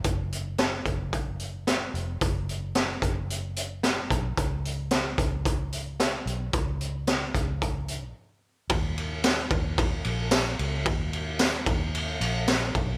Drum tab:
RD |--------|--------|--------|--------|
HH |xxxxxxxx|xxxxxxxx|xxxxxxxx|xxxxxx--|
TB |--------|--------|--------|--------|
SD |--o---o-|--o---o-|--o---o-|--o-----|
BD |o--oo---|o--o---o|o--oo---|o--oo---|

RD |xxxxxxxx|xxxxxxxx|
HH |--------|--------|
TB |--x---x-|--x---x-|
SD |--o---o-|--o---o-|
BD |o--oo---|o--o---o|